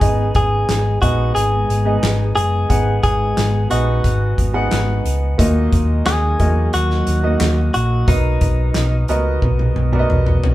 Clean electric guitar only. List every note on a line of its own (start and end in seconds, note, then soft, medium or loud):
0.00 0.35 G#4 medium
0.36 1.01 G#4 medium
1.02 1.34 F#4 medium
1.35 2.32 G#4 medium
2.36 3.02 G#4 medium
3.03 3.70 G#4 medium
3.71 5.01 F#4 medium
6.06 6.73 G#4 loud
6.74 7.73 F#4 medium
7.74 8.09 F#4 medium
8.08 9.05 D#4 medium